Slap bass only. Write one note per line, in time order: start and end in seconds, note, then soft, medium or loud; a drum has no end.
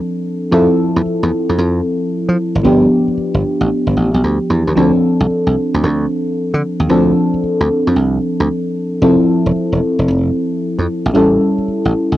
0.52 0.66 F2 loud
0.96 1.04 E2 medium
1.06 muted slap bass stroke soft
1.23 1.30 E2 medium
1.49 1.57 F2 medium
1.58 1.80 F2 loud
2.29 2.36 F3 medium
2.55 2.63 G#1 medium
2.65 2.86 G1 loud
3.08 muted slap bass stroke soft
3.18 muted slap bass stroke medium
3.34 3.42 G1 medium
3.61 3.69 A1 medium
3.87 3.95 G1 medium
3.97 4.11 A1 medium
4.14 4.22 B1 medium
4.24 4.38 D2 medium
4.50 4.64 E2 medium
4.67 4.75 D#2 medium
4.77 4.91 D2 loud
5.20 5.28 C2 medium
5.30 muted slap bass stroke soft
5.47 5.54 C2 medium
5.74 5.82 D2 medium
5.83 6.05 D2 loud
6.54 6.61 D3 loud
6.80 6.87 D#2 medium
6.89 7.11 D2 loud
7.34 muted slap bass stroke soft
7.43 muted slap bass stroke soft
7.61 7.68 D2 medium
7.87 7.94 F2 medium
7.96 8.17 C2 loud
8.40 8.47 D2 medium
9.02 9.16 F1 loud
9.46 9.53 E1 medium
9.56 muted slap bass stroke soft
9.72 9.80 E1 medium
9.99 10.06 F1 medium
10.08 10.29 F1 loud
10.79 10.86 F2 medium
11.06 11.13 A#1 medium
11.15 11.36 A1 loud
11.58 muted slap bass stroke soft
11.68 muted slap bass stroke soft
11.85 11.92 A1 medium
12.12 12.17 C#2 medium